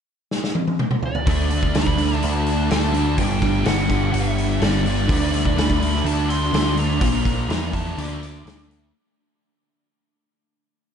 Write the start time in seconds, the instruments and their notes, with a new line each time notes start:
0.31 snare
0.44 snare
0.55 high tom
0.67 high tom
0.79 mid tom
0.91 mid tom
1.03 lead electric guitar D5, floor tom
1.15 floor tom
1.26 picked electric bass D2, distorted electric guitar D3 A3 D4, kick, open hi-hat
1.50 distorted electric guitar A3 D4, open hi-hat
1.63 kick
1.74 picked electric bass D2, distorted electric guitar D3 A3 D4, snare, open hi-hat
1.78 lead electric guitar B5
1.87 kick
1.97 distorted electric guitar A3 D4, open hi-hat
2.11 snare
2.22 picked electric bass D2, lead electric guitar A5, open hi-hat
2.46 open hi-hat
2.69 picked electric bass D2, distorted electric guitar D3 A3 D4, lead electric guitar A5, snare, open hi-hat
2.94 distorted electric guitar A3 D4, open hi-hat
3.17 picked electric bass G1, distorted electric guitar G2 D3 G3, lead electric guitar G5, kick, open hi-hat
3.41 distorted electric guitar D3 G3, kick, open hi-hat
3.64 picked electric bass G1, distorted electric guitar G2 D3 G3, lead electric guitar F#5, snare, open hi-hat
3.89 distorted electric guitar D3 G3, kick, open hi-hat
4.13 picked electric bass G1, lead electric guitar E5, open hi-hat
4.38 open hi-hat
4.60 picked electric bass G1, distorted electric guitar G2 D3 G3, lead electric guitar D5, snare, open hi-hat
4.84 distorted electric guitar D3 G3, lead electric guitar D5, open hi-hat
5.07 picked electric bass D2, distorted electric guitar D3 A3 D4, kick, open hi-hat
5.31 distorted electric guitar A3 D4, open hi-hat
5.45 kick
5.55 picked electric bass D2, distorted electric guitar D3 A3 D4, lead electric guitar B5, open hi-hat
5.59 snare
5.70 kick
5.80 distorted electric guitar A3 D4, open hi-hat
5.95 snare
6.04 picked electric bass D2, lead electric guitar A5, open hi-hat
6.29 lead electric guitar C6, open hi-hat
6.52 picked electric bass D2, distorted electric guitar D3 A3 D4, snare, open hi-hat
6.76 distorted electric guitar A3 D4, lead electric guitar A#5, open hi-hat
6.99 picked electric bass A#1, distorted electric guitar A#2 F3 A#3, kick, open hi-hat
7.24 distorted electric guitar F3 A#3, kick, open hi-hat
7.48 picked electric bass E2, distorted electric guitar A#2 F3 A#3, snare, open hi-hat
7.72 distorted electric guitar F3 A#3, lead electric guitar A5, kick, open hi-hat
7.97 picked electric bass D2, distorted electric guitar D3 A3 D4, lead electric guitar D6, open hi-hat
8.23 open hi-hat
8.44 picked electric bass D2, distorted electric guitar D3 A3 D4, snare, open hi-hat
8.68 distorted electric guitar A3 D4, open hi-hat